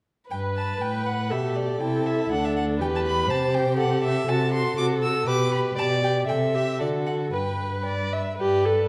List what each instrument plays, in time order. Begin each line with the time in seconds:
0.31 cello G2, violin B4 G5, viola B4
0.56 violin A5
0.81 cello A2, viola B4, violin G5
1.06 violin F#5
1.31 cello B2, viola G4, violin A4 E5
1.56 violin D5
1.81 cello C3, viola E4, violin G5
2.06 violin E5
2.31 cello D2, viola D4, violin F#5
2.45 violin E5
2.56 violin F#5
2.80 cello E2, viola G4, violin B4 G5
2.95 violin A5
3.06 violin B5
3.28 cello C3, viola G4, violin C5 A5
3.55 violin G5
3.77 violin A4 F#5
4.04 violin E5
4.27 cello C3, viola F#4, violin A4 A5
4.53 viola F#4, violin C6
4.77 cello C3, viola F#4, violin D6
5.02 viola F#4, violin E6
5.27 cello B2, viola G4, violin B4 D6
5.53 viola G4, violin B5
5.77 cello B2, viola G4, violin D5 A5
6.03 viola G4, violin G5
6.27 cello C3, viola A4, violin E5 G5
6.54 viola G4, violin E5
6.79 cello D3, viola F#4, violin A4 D5
7.07 violin F#5
7.33 cello G2, violin B4 G5, viola B4
7.85 violin D5
8.13 violin E5
8.38 cello G2, viola G4, violin B4 D5
8.65 viola A4